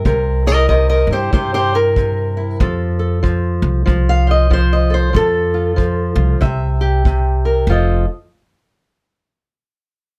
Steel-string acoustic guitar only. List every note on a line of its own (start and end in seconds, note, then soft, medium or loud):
0.05 0.68 C3 medium
0.05 0.46 A#4 medium
0.46 1.09 E4 medium
0.46 0.68 A#4 loud
0.46 0.67 D#5 loud
0.69 1.32 C3 medium
0.69 0.88 A#4 medium
0.69 0.88 D#5 loud
0.89 1.10 A#4 loud
0.89 1.10 D#5 loud
1.11 1.73 E4 soft
1.11 1.32 G4 medium
1.11 1.33 C5 loud
1.33 1.96 C3 medium
1.33 1.53 G4 medium
1.33 1.54 C5 medium
1.54 1.75 G4 loud
1.54 1.75 C5 loud
1.74 2.36 E4 soft
1.74 2.59 A#4 loud
1.97 2.60 C3 medium
2.37 2.57 E4 soft
2.61 3.21 F3 medium
2.61 2.98 A4 medium
2.99 4.89 A4 soft
3.23 3.84 F3 medium
3.86 4.49 F3 medium
4.09 4.30 F5 loud
4.27 4.53 C5 medium
4.27 4.51 D#5 medium
4.50 5.12 F3 medium
4.50 4.73 C5 loud
4.73 4.93 D#5 medium
4.90 5.11 A4 soft
4.90 5.14 C5 loud
5.13 5.75 F3 medium
5.13 6.42 A4 loud
5.54 6.14 F4 soft
5.76 6.40 F3 medium
6.15 6.38 F4 soft
6.41 7.04 C3 medium
6.41 7.66 E5 medium
6.81 7.66 G4 medium
7.06 7.69 C3 medium
7.45 7.66 A#4 medium
7.70 8.04 F3 medium
7.70 8.04 F4 medium
7.70 8.05 A4 medium
7.70 8.05 D#5 medium